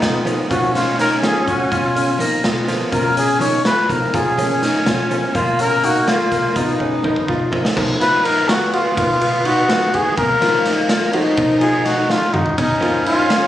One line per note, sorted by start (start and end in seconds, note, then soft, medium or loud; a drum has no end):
0.00 0.39 B2 medium
0.00 0.52 B3 medium
0.00 0.21 C#4 medium
0.00 0.25 D#4 medium
0.00 0.21 F4 medium
0.00 0.31 F4 medium
0.00 0.21 F#4 medium
0.00 0.21 A#4 soft
0.00 snare medium
0.00 closed hi-hat medium
0.25 0.49 F3 medium
0.25 0.49 A#3 medium
0.25 0.50 C#4 medium
0.25 0.50 D#4 medium
0.25 closed hi-hat medium
0.50 1.25 B2 medium
0.50 0.84 F3 medium
0.50 0.84 A#3 soft
0.50 2.21 C#4 loud
0.50 0.85 C#4 soft
0.50 0.85 D#4 medium
0.50 0.65 F4 medium
0.50 0.73 F#4 medium
0.50 kick loud
0.50 closed hi-hat medium
0.74 0.89 C#4 medium
0.74 0.97 F4 medium
0.74 snare soft
0.74 closed hi-hat medium
0.98 1.13 D#4 medium
0.98 1.10 A#4 loud
0.98 snare soft
0.98 closed hi-hat medium
1.22 1.39 F3 medium
1.22 1.40 A#3 soft
1.22 1.40 C#4 soft
1.22 1.40 D#4 medium
1.22 1.52 F4 medium
1.22 1.50 G#4 medium
1.22 snare medium
1.22 closed hi-hat medium
1.48 1.66 B2 medium
1.48 1.74 F#4 medium
1.48 kick medium
1.48 closed hi-hat medium
1.71 2.28 B2 loud
1.71 1.86 F4 medium
1.71 2.21 F4 medium
1.71 kick loud
1.71 closed hi-hat medium
1.96 2.11 C#4 medium
1.96 closed hi-hat medium
2.18 2.53 F3 medium
2.18 2.53 A#3 soft
2.18 2.46 A#3 medium
2.18 2.54 C#4 medium
2.18 2.54 D#4 medium
2.18 2.35 D#4 medium
2.18 closed hi-hat medium
2.44 2.82 B2 medium
2.44 2.91 B3 medium
2.44 2.74 F4 medium
2.44 snare medium
2.44 closed hi-hat medium
2.68 3.02 F3 medium
2.68 3.02 A#3 medium
2.68 3.02 C#4 medium
2.68 3.02 F4 medium
2.68 snare soft
2.68 closed hi-hat medium
2.92 3.67 B2 medium
2.92 3.82 C#4 medium
2.92 3.07 F4 medium
2.92 3.16 A#4 medium
2.92 kick medium
2.92 closed hi-hat medium
3.17 3.32 C#4 medium
3.17 3.42 G#4 medium
3.17 closed hi-hat medium
3.40 3.57 F3 medium
3.40 3.58 A#3 medium
3.40 3.58 C#4 medium
3.40 3.56 D#4 medium
3.40 3.58 F4 medium
3.40 3.65 C#5 medium
3.40 closed hi-hat medium
3.65 3.94 F4 medium
3.65 3.92 B4 medium
3.65 snare medium
3.65 closed hi-hat medium
3.89 4.08 B2 medium
3.89 4.23 F3 medium
3.89 4.23 A#3 soft
3.89 4.23 C#4 medium
3.89 4.23 D#4 medium
3.89 4.17 A#4 medium
3.89 kick medium
3.89 closed hi-hat medium
4.13 4.70 B2 medium
4.13 5.37 C#4 loud
4.13 4.29 F4 medium
4.13 4.63 G#4 medium
4.13 kick loud
4.13 closed hi-hat medium
4.37 5.05 F3 medium
4.37 5.05 A#3 medium
4.37 5.06 C#4 medium
4.37 4.53 C#4 medium
4.37 5.06 F4 medium
4.37 closed hi-hat medium
4.62 4.77 D#4 medium
4.62 snare soft
4.62 closed hi-hat medium
4.86 5.23 B2 medium
4.86 5.16 F4 medium
4.86 snare medium
4.86 closed hi-hat medium
5.10 5.27 F3 medium
5.10 5.28 A#3 medium
5.10 5.28 C#4 medium
5.10 5.28 F4 medium
5.10 closed hi-hat medium
5.34 6.09 B2 medium
5.34 5.51 F3 medium
5.34 5.52 A#3 medium
5.34 6.58 A#3 loud
5.34 5.52 C#4 medium
5.34 5.50 F4 medium
5.34 5.52 F4 medium
5.34 5.62 F4 medium
5.34 kick loud
5.34 closed hi-hat medium
5.59 5.74 C#4 medium
5.59 5.86 A#4 loud
5.59 closed hi-hat medium
5.83 5.98 D#4 medium
5.83 6.08 F#4 medium
5.83 closed hi-hat medium
6.08 6.37 F4 medium
6.08 6.58 F4 medium
6.08 snare medium
6.08 closed hi-hat medium
6.32 6.50 B2 medium
6.32 kick medium
6.32 snare soft
6.32 closed hi-hat medium
6.56 7.12 B2 medium
6.56 7.53 B3 medium
6.56 7.53 D#4 medium
6.56 6.71 F4 medium
6.56 kick medium
6.56 closed hi-hat medium
6.80 6.95 C#4 medium
6.80 kick medium
7.03 7.37 F3 soft
7.03 7.38 C#4 soft
7.03 7.19 D#4 medium
7.03 7.38 D#4 medium
7.03 7.38 A#4 soft
7.03 kick medium
7.16 kick medium
7.28 7.66 B2 medium
7.28 7.57 F4 medium
7.28 kick medium
7.52 7.75 F3 medium
7.52 7.76 A#3 medium
7.52 7.75 C#4 medium
7.52 7.76 D#4 medium
7.52 kick medium
7.65 snare medium
7.76 7.95 B2 medium
7.76 8.44 F3 medium
7.76 10.19 B3 medium
7.76 8.44 C#4 medium
7.76 8.44 D#4 medium
7.76 8.44 A#4 medium
7.76 kick loud
7.76 crash medium
8.01 8.15 F4 medium
8.01 8.26 B4 medium
8.01 snare soft
8.01 ride medium
8.24 8.40 D#4 medium
8.24 8.50 A#4 loud
8.24 ride medium
8.49 8.64 F4 medium
8.49 8.72 F#4 medium
8.49 snare loud
8.49 ride medium
8.72 8.95 F4 medium
8.72 8.88 F#4 medium
8.72 ride medium
8.97 9.72 B2 medium
8.97 9.14 F3 soft
8.97 9.14 A#3 medium
8.97 9.14 C#4 medium
8.97 9.14 D#4 medium
8.97 9.47 F4 medium
8.97 kick loud
8.97 ride medium
9.21 9.36 F4 medium
9.21 ride medium
9.45 9.60 D#4 medium
9.45 9.97 F#4 medium
9.45 ride medium
9.69 9.86 F3 medium
9.69 9.86 A#3 soft
9.69 9.86 C#4 soft
9.69 9.86 D#4 soft
9.69 9.83 F4 medium
9.69 snare loud
9.69 ride medium
9.93 10.12 D#3 medium
9.93 10.08 F#4 medium
9.93 10.17 G#4 medium
9.93 ride medium
10.17 10.36 B2 medium
10.17 11.14 A#3 loud
10.17 10.62 A#4 medium
10.17 kick loud
10.17 ride medium
10.41 11.09 F3 medium
10.41 11.09 A#3 medium
10.41 11.09 C#4 medium
10.41 11.09 D#4 medium
10.41 10.56 F4 medium
10.41 snare soft
10.41 ride medium
10.65 10.80 D#4 medium
10.65 snare soft
10.65 ride medium
10.89 11.04 F4 medium
10.89 snare loud
10.89 ride medium
11.13 11.36 F3 medium
11.13 11.36 A#3 medium
11.13 11.37 C#4 medium
11.13 12.34 D#4 loud
11.13 11.38 F4 medium
11.13 11.28 F#4 medium
11.13 ride medium
11.37 12.12 B2 medium
11.37 12.05 F3 medium
11.37 12.05 A#3 medium
11.37 12.05 C#4 medium
11.37 12.05 D#4 medium
11.37 kick loud
11.37 ride medium
11.61 11.76 F4 medium
11.61 11.87 G#4 medium
11.61 ride medium
11.85 12.00 D#4 medium
11.85 12.12 F#4 medium
11.85 snare soft
11.85 ride medium
12.09 12.26 F3 medium
12.09 12.26 A#3 soft
12.09 12.27 C#4 medium
12.09 12.24 F4 medium
12.09 12.27 F4 medium
12.09 12.35 F4 medium
12.09 snare medium
12.33 12.53 D#3 medium
12.33 12.57 D#4 medium
12.33 12.49 F#4 medium
12.33 mid tom medium
12.46 floor tom medium
12.58 12.77 B2 loud
12.58 13.47 C#4 loud
12.58 13.03 D#4 medium
12.58 kick loud
12.58 ride medium
12.58 splash medium
12.81 13.47 F3 medium
12.81 13.47 A#3 medium
12.81 13.47 C#4 medium
12.81 13.47 F4 medium
12.81 12.97 F4 medium
12.81 ride medium
13.06 13.21 D#4 medium
13.06 13.47 F4 medium
13.06 ride medium
13.30 13.45 F4 medium
13.30 snare loud
13.30 ride medium